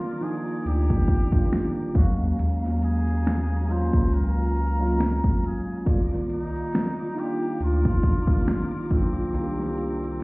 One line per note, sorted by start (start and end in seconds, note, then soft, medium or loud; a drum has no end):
0.00 1.32 D#3 medium
0.00 1.32 G3 medium
0.00 0.22 A#3 medium
0.00 0.23 D4 medium
0.00 0.24 F4 medium
0.00 0.24 F4 loud
0.00 1.92 F4 medium
0.00 1.97 A#4 medium
0.00 1.92 D5 medium
0.00 1.92 A#5 medium
0.00 1.92 D6 medium
0.21 1.01 F3 medium
0.21 1.01 A#3 medium
0.21 1.02 D4 medium
0.21 1.01 D#4 medium
0.21 1.02 F4 medium
0.21 0.68 G#4 loud
0.21 closed hi-hat medium
0.65 1.03 D2 medium
0.65 1.96 G4 loud
0.65 closed hi-hat medium
0.90 kick medium
1.08 kick medium
1.08 closed hi-hat medium
1.32 1.95 D#3 medium
1.32 1.95 G3 medium
1.32 1.94 A#3 medium
1.32 1.96 D4 medium
1.32 1.96 F4 medium
1.32 kick loud
1.52 finger snap medium
1.52 snare loud
1.52 closed hi-hat medium
1.93 2.33 D#2 medium
1.93 3.34 F#3 medium
1.93 5.82 F#3 medium
1.93 3.35 G#3 medium
1.93 3.35 A#3 medium
1.93 3.36 C#4 medium
1.93 2.13 F#4 medium
1.93 5.82 F5 medium
1.93 3.36 F5 medium
1.93 5.82 G#5 medium
1.93 5.82 A#5 medium
1.93 kick loud
1.93 closed hi-hat medium
2.39 3.90 D#2 medium
2.39 closed hi-hat loud
2.64 snare soft
2.82 3.72 G#4 loud
2.82 closed hi-hat medium
3.08 closed hi-hat medium
3.25 finger snap loud
3.25 snare loud
3.25 closed hi-hat medium
3.68 4.48 F#3 medium
3.68 4.49 G#3 medium
3.68 4.49 A#3 medium
3.68 4.50 C#4 medium
3.68 4.50 F4 medium
3.68 4.15 C5 medium
3.68 closed hi-hat medium
3.93 5.20 C#2 medium
3.93 kick medium
4.13 5.48 A#4 loud
4.13 closed hi-hat medium
4.57 closed hi-hat medium
4.79 5.57 F#3 medium
4.79 5.58 G#3 medium
4.79 5.59 A#3 medium
4.79 5.59 C#4 medium
4.79 5.59 F4 medium
5.00 finger snap medium
5.00 snare loud
5.00 closed hi-hat medium
5.24 kick loud
5.44 5.88 G#4 medium
5.44 closed hi-hat medium
5.86 6.45 C2 medium
5.86 6.82 D#3 medium
5.86 6.82 G3 medium
5.86 6.82 A#3 medium
5.86 10.23 F4 medium
5.86 6.83 F4 medium
5.86 6.83 D5 medium
5.86 10.23 F5 medium
5.86 10.23 A#5 medium
5.86 10.23 D6 medium
5.86 kick loud
5.86 closed hi-hat medium
6.11 snare soft
6.30 7.21 D#4 loud
6.30 closed hi-hat medium
6.56 closed hi-hat soft
6.73 finger snap loud
6.73 snare loud
6.73 closed hi-hat medium
7.15 7.96 G3 medium
7.15 7.97 A#3 medium
7.15 7.97 D4 medium
7.15 7.96 D#4 medium
7.15 7.97 F4 medium
7.15 closed hi-hat medium
7.19 7.61 G4 loud
7.60 7.98 D2 loud
7.60 8.45 F4 loud
7.60 closed hi-hat medium
7.85 kick medium
8.03 kick medium
8.03 closed hi-hat medium
8.27 9.05 D#3 medium
8.27 9.06 G3 medium
8.27 9.06 A#3 medium
8.27 9.07 D4 medium
8.27 9.07 F4 medium
8.27 kick medium
8.48 8.94 F4 loud
8.48 finger snap medium
8.48 snare loud
8.48 closed hi-hat medium
8.90 9.28 B1 medium
8.90 10.23 C4 medium
8.90 kick medium
8.90 closed hi-hat medium
9.33 10.23 C2 loud
9.33 10.23 D#3 medium
9.33 10.23 G3 medium
9.33 10.23 A#3 medium
9.33 10.23 D4 medium
9.33 9.42 F4 medium
9.33 closed hi-hat medium
9.43 10.23 G4 medium
9.60 snare soft
9.78 closed hi-hat medium
10.03 closed hi-hat medium
10.20 closed hi-hat medium